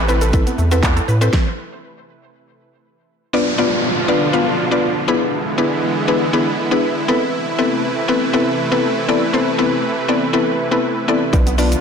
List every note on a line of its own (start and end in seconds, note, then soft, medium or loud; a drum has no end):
0.00 0.45 A1 loud
0.00 1.31 C3 medium
0.00 1.30 E3 medium
0.00 1.31 A3 medium
0.00 1.30 E4 medium
0.00 1.31 B4 medium
0.08 0.23 C4 medium
0.08 0.24 E4 medium
0.08 0.24 A4 medium
0.08 0.20 B4 medium
0.08 0.24 B4 loud
0.08 shaker medium
0.21 0.32 A4 medium
0.21 closed hi-hat medium
0.21 shaker medium
0.33 0.55 C4 medium
0.33 0.55 E4 medium
0.33 0.55 A4 medium
0.33 0.55 B4 loud
0.33 kick loud
0.33 closed hi-hat medium
0.33 shaker medium
0.46 0.57 B3 medium
0.46 closed hi-hat medium
0.46 shaker medium
0.58 1.01 E2 loud
0.58 0.70 A3 medium
0.58 shaker medium
0.71 0.82 B3 medium
0.71 1.00 C4 medium
0.71 1.00 E4 medium
0.71 1.00 A4 medium
0.71 1.00 B4 loud
0.71 closed hi-hat medium
0.71 shaker medium
0.83 kick loud
0.83 clap loud
0.83 closed hi-hat medium
0.83 shaker medium
0.96 1.07 A4 medium
0.96 closed hi-hat soft
0.96 shaker soft
1.08 1.30 A2 medium
1.08 1.20 B4 medium
1.08 shaker medium
1.21 1.28 C4 medium
1.21 1.28 E4 medium
1.21 1.28 A4 medium
1.21 1.28 B4 loud
1.21 1.32 C5 medium
1.21 closed hi-hat soft
1.21 shaker medium
1.33 kick loud
1.33 snare medium
3.33 5.07 B2 medium
3.33 5.07 D3 medium
3.33 5.07 F3 medium
3.33 3.48 B3 medium
3.33 3.48 D4 medium
3.33 5.07 D4 medium
3.33 3.48 F4 medium
3.33 5.07 F4 loud
3.33 3.49 B4 medium
3.33 3.49 D5 loud
3.33 downlifter medium
3.58 3.87 B3 medium
3.58 3.87 D4 medium
3.58 3.87 F4 medium
3.58 3.87 B4 medium
3.58 3.87 D5 loud
4.08 4.23 B3 medium
4.08 4.23 D4 medium
4.08 4.23 F4 medium
4.08 4.23 B4 medium
4.08 4.24 D5 medium
4.33 4.55 B3 medium
4.33 4.55 D4 medium
4.33 4.55 F4 medium
4.33 4.55 B4 medium
4.33 4.55 F5 loud
4.71 4.93 B3 medium
4.71 4.93 D4 medium
4.71 4.93 F4 medium
4.71 4.93 B4 medium
4.71 4.93 D5 medium
5.08 7.07 D3 medium
5.08 7.07 E3 medium
5.08 7.06 G#3 medium
5.08 5.49 B3 medium
5.08 7.07 B3 medium
5.08 5.49 D4 medium
5.08 5.49 E4 medium
5.08 11.29 E4 loud
5.08 5.49 G#4 medium
5.08 5.49 B4 loud
5.58 5.87 B3 medium
5.58 5.87 D4 medium
5.58 5.87 E4 medium
5.58 5.87 G#4 medium
5.58 5.87 B4 loud
6.08 6.23 B3 medium
6.08 6.23 D4 medium
6.08 6.23 E4 medium
6.08 6.23 G#4 medium
6.08 6.23 B4 loud
6.33 6.55 B3 medium
6.33 6.55 D4 medium
6.33 6.55 E4 medium
6.33 6.55 G#4 medium
6.33 6.55 B4 loud
6.71 6.93 B3 medium
6.71 6.93 D4 medium
6.71 6.93 E4 medium
6.71 6.93 G#4 medium
6.71 6.93 B4 medium
7.08 11.29 C3 medium
7.08 11.29 E3 medium
7.08 11.29 A3 medium
7.08 7.49 B3 loud
7.08 7.49 C4 medium
7.08 7.49 E4 medium
7.08 7.49 A4 medium
7.08 11.29 B4 medium
7.08 7.49 B4 loud
7.58 7.87 B3 medium
7.58 7.87 C4 medium
7.58 7.87 E4 medium
7.58 7.87 A4 medium
7.58 7.87 B4 loud
8.08 8.23 B3 medium
8.08 8.23 C4 medium
8.08 8.23 E4 medium
8.08 8.23 A4 medium
8.08 8.24 B4 medium
8.33 8.55 B3 medium
8.33 8.55 C4 medium
8.33 8.55 E4 medium
8.33 8.55 A4 medium
8.33 8.55 B4 loud
8.72 8.93 B3 medium
8.72 8.93 C4 medium
8.72 8.93 E4 medium
8.72 8.93 A4 medium
8.72 8.93 B4 loud
9.08 9.23 B3 medium
9.08 9.23 C4 medium
9.08 9.23 E4 medium
9.08 9.24 A4 medium
9.08 9.24 D5 loud
9.33 9.48 B3 medium
9.33 9.48 C4 medium
9.33 9.48 E4 medium
9.33 9.49 A4 medium
9.33 9.49 C5 loud
9.58 9.87 B3 medium
9.58 9.87 C4 medium
9.58 9.87 E4 medium
9.58 9.87 A4 medium
9.58 9.88 B4 loud
10.08 10.23 B3 medium
10.08 10.23 C4 medium
10.08 10.24 E4 medium
10.08 10.24 A4 medium
10.08 10.24 D5 loud
10.33 10.55 B3 medium
10.33 10.55 C4 medium
10.33 10.55 E4 medium
10.33 10.55 A4 medium
10.33 10.55 B4 loud
10.71 10.93 B3 medium
10.71 10.93 C4 medium
10.71 10.93 E4 medium
10.71 10.93 A4 medium
10.71 10.93 B4 loud
11.08 11.23 B3 medium
11.08 11.23 C4 medium
11.08 11.23 E4 medium
11.08 11.23 A4 medium
11.08 11.23 D5 loud
11.33 11.76 B1 loud
11.33 11.81 B2 medium
11.33 11.81 D3 medium
11.33 11.81 F3 medium
11.33 11.45 F3 loud
11.33 11.48 B3 medium
11.33 11.48 D4 medium
11.33 11.81 D4 medium
11.33 11.81 F4 loud
11.33 11.48 F4 medium
11.33 11.48 B4 medium
11.33 11.48 D5 loud
11.33 kick loud
11.33 closed hi-hat medium
11.33 shaker medium
11.47 11.57 B3 medium
11.47 closed hi-hat medium
11.47 shaker medium
11.58 11.81 B3 medium
11.58 11.70 D4 medium
11.58 11.81 D4 medium
11.58 11.81 F4 medium
11.58 11.81 B4 medium
11.58 11.81 D5 loud
11.58 open hi-hat medium
11.58 shaker medium
11.72 closed hi-hat medium
11.72 shaker medium